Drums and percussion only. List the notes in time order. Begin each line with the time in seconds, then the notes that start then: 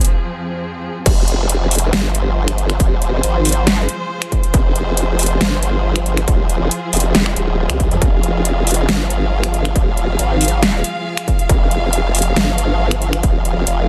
0.01 closed hi-hat
0.05 closed hi-hat
1.06 kick, closed hi-hat, crash
1.28 closed hi-hat
1.49 closed hi-hat
1.71 closed hi-hat, open hi-hat
1.78 closed hi-hat
1.93 snare, closed hi-hat
2.15 closed hi-hat
2.48 finger snap, closed hi-hat
2.58 closed hi-hat
2.70 finger snap, closed hi-hat
2.80 kick, closed hi-hat
3.02 closed hi-hat
3.23 closed hi-hat
3.45 closed hi-hat, open hi-hat
3.52 closed hi-hat
3.67 snare, closed hi-hat
3.89 closed hi-hat
4.22 finger snap, closed hi-hat
4.32 kick, closed hi-hat
4.43 closed hi-hat
4.54 kick, closed hi-hat
4.76 closed hi-hat
4.97 closed hi-hat
5.19 closed hi-hat, open hi-hat
5.26 closed hi-hat
5.41 snare, closed hi-hat
5.63 closed hi-hat
5.96 finger snap, closed hi-hat
6.06 closed hi-hat
6.17 finger snap, closed hi-hat
6.28 kick, closed hi-hat
6.49 closed hi-hat
6.71 closed hi-hat
6.93 closed hi-hat, open hi-hat
7.00 closed hi-hat
7.15 snare, closed hi-hat
7.26 finger snap
7.36 closed hi-hat
7.70 finger snap, closed hi-hat
7.80 kick, closed hi-hat
7.91 closed hi-hat
8.02 kick, closed hi-hat
8.23 closed hi-hat
8.45 closed hi-hat
8.67 closed hi-hat, open hi-hat
8.74 closed hi-hat
8.89 snare, closed hi-hat
9.10 closed hi-hat
9.44 finger snap, closed hi-hat
9.54 closed hi-hat
9.65 finger snap, closed hi-hat
9.76 kick, closed hi-hat
9.97 closed hi-hat
10.19 closed hi-hat
10.41 closed hi-hat, open hi-hat
10.48 closed hi-hat
10.63 snare, closed hi-hat
10.84 closed hi-hat
11.17 finger snap, closed hi-hat
11.28 kick, closed hi-hat
11.39 closed hi-hat
11.49 kick, closed hi-hat
11.71 closed hi-hat
11.93 closed hi-hat
12.15 closed hi-hat, open hi-hat
12.22 closed hi-hat
12.36 snare, closed hi-hat
12.58 closed hi-hat
12.91 finger snap, closed hi-hat
13.02 closed hi-hat
13.13 finger snap, closed hi-hat
13.23 kick, closed hi-hat
13.45 closed hi-hat
13.67 closed hi-hat